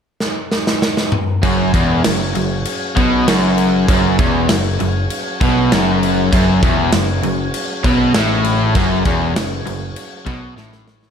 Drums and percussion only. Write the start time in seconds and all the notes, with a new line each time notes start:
0.20 snare
0.52 snare
0.67 snare
0.82 snare
0.97 snare
1.12 mid tom
1.43 kick, crash
1.74 kick, crash
2.04 snare, crash
2.35 crash
2.65 crash
2.97 kick, crash
3.28 snare, crash
3.58 crash
3.88 kick, crash
4.19 kick, crash
4.49 snare, crash
4.80 crash
5.10 crash
5.41 kick, crash
5.72 snare, crash
6.03 crash
6.33 kick, crash
6.63 kick, crash
6.92 snare, crash
7.23 crash
7.54 crash
7.84 kick, crash
8.14 snare, crash
8.45 crash
8.75 kick, crash
9.05 kick, crash
9.36 snare, crash
9.67 crash
9.96 crash
10.27 kick, crash
10.57 snare
10.72 snare
10.88 snare
11.03 snare